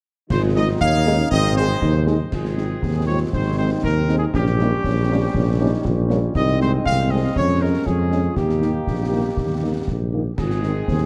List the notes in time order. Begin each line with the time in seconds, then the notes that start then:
0.30 G#1 D#3 D#4 F4 G#4 C5, concert bass drum, snare, crash
0.55 G#3 D#4 G#4 C5 D#5
0.81 D#2 D#4 C#5 F5, concert bass drum, snare
0.94 snare
1.06 G#3 C#4 D#4 G#4, snare
1.31 G#1 C4 C5 D#5, concert bass drum
1.57 G#3 D#4 G#4 C5, snare
1.82 D#2 D#4, concert bass drum, snare
2.07 G#3 D#4 G#4, snare
2.32 G#1 D#3 C4 F4 G#4, concert bass drum, snare, crash
2.45 snare
2.57 G#3 C4 D#4, snare
2.83 D#2 D#4, concert bass drum, snare
3.07 G#3 C4 D#4 F4 C#5
3.33 G#1 D#4 C5, concert bass drum, snare
3.58 G#3 C4 D#4 C5
3.83 D#2 A#4, concert bass drum, snare
4.09 G#3 C4 D#4, snare
4.18 G#4
4.34 A#1 G3 C#4 G4, concert bass drum, snare
4.46 snare
4.59 G3 A#3 C#4 D#4, snare
4.84 A#1 C#4, concert bass drum, snare
5.10 G3 A#3 C4 C#4
5.34 A#1 C#4, concert bass drum, snare
5.60 G3 A#3 C#4 D#4
5.85 A#1 F4, concert bass drum, snare
6.10 G3 A#3 C#4, snare
6.35 C2 G#3 C4 D#4 D#5, concert bass drum, snare, crash
6.48 snare
6.60 G#3 C4 C5, snare
6.85 C2 C4 F5, concert bass drum, snare
7.11 G#3 C4 D#5
7.36 F2 C#4 C#5, concert bass drum, snare
7.61 G#3 C#4 A#4
7.86 F2 F4 G#4, concert bass drum, snare
8.12 G#3 C#4, snare
8.36 D#2 D#3 A#3 G4, concert bass drum, snare
8.49 snare
8.62 D#3 A#3 D#4, snare
8.87 A#1, concert bass drum, snare
9.12 D#3 A#3 D#4
9.37 D#2, concert bass drum, snare
9.63 D#3 A#3 D#4
9.88 A#1, concert bass drum, snare
10.13 D#3 A#3 D#4
10.38 G#1 D#3 C4 F4 G#4, concert bass drum, snare, crash
10.50 snare
10.62 D#3 C4 D#4, snare
10.88 D#2 C4, concert bass drum, snare